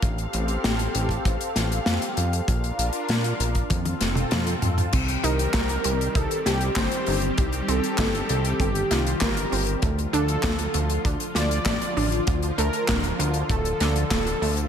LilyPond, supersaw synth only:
\new Staff \with { instrumentName = "Supersaw synth" } { \time 4/4 \key c \dorian \tempo 4 = 98 r1 | r1 | r8 bes'4. a'8 g'8 c''8. r16 | r8 a'4. g'8 f'8 bes'8. r16 |
r8 a'4. r8 d''4. | r8 bes'4 r8 a'4 a'8. r16 | }